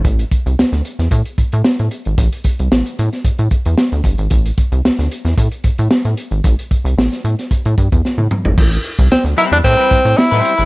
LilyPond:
<<
  \new Staff \with { instrumentName = "Clean electric guitar" } { \time 4/4 \key a \minor \tempo 4 = 112 r1 | r1 | r1 | r1 |
r4. <g c' e' b'>8 <g c' e' b'>16 <g c' e' b'>8 r8 <g c' e' c''>8 <g c' e' b'>16 | }
  \new Staff \with { instrumentName = "Tenor saxophone" } { \time 4/4 \key a \minor r1 | r1 | r1 | r1 |
r4 c'8 e'16 d'16 c'4 e'4 | }
  \new Staff \with { instrumentName = "Analog synth bass" } { \clef bass \time 4/4 \key a \minor a,,8 r16 c,16 d,16 d,16 r16 e,16 a,16 r16 a,16 a,16 r16 a,16 r16 gis,,16 | a,,16 r8 c,16 a,,16 r16 a,16 r16 a,16 a,16 r16 e,16 r16 d,16 g,,16 gis,,16 | a,,8 r16 c,16 d,16 d,16 r16 e,16 a,16 r16 a,16 a,16 r16 a,16 r16 gis,,16 | a,,16 r8 c,16 a,,16 r16 a,16 r8 a,16 g,16 e,16 r16 a,16 r16 gis,,16 |
a,,8 r16 c,16 d,16 d,16 r16 e,16 a,16 r16 a,16 a,16 r16 a,16 r16 gis,,16 | }
  \new DrumStaff \with { instrumentName = "Drums" } \drummode { \time 4/4 <hh bd>16 hh16 <hh bd>16 hh16 sn16 <hh sn>16 hh16 <hh sn>16 <hh bd>16 hh16 <hh bd>16 hh16 sn16 hh16 hh16 hh16 | <hh bd>16 hh16 <hh bd>16 hh16 sn16 hh16 hh16 <hh sn>16 <hh bd>16 hh16 <hh bd>16 hh16 sn16 hh16 <hh bd>16 hh16 | <hh bd>16 hh16 <hh bd>16 hh16 sn16 <hh sn>16 hh16 <hh sn>16 <hh bd>16 hh16 <hh bd>16 hh16 sn16 hh16 hh16 hh16 | <hh bd>16 hh16 <hh bd>16 hh16 sn16 <hh sn>16 hh16 <hh sn>16 <hh bd>16 hh16 <hh bd>16 <hh bd>16 sn16 tommh16 toml16 tomfh16 |
<cymc bd>16 hh16 hh16 <hh bd>16 sn16 hh16 hh16 hh16 <hh bd>16 hh16 <hh bd>16 hh16 sn16 hh16 hh16 hh16 | }
>>